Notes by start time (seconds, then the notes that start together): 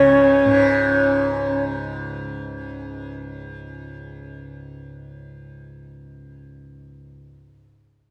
Already playing: C#2 G#2 C#3 C#4 C#5
0.45 G#2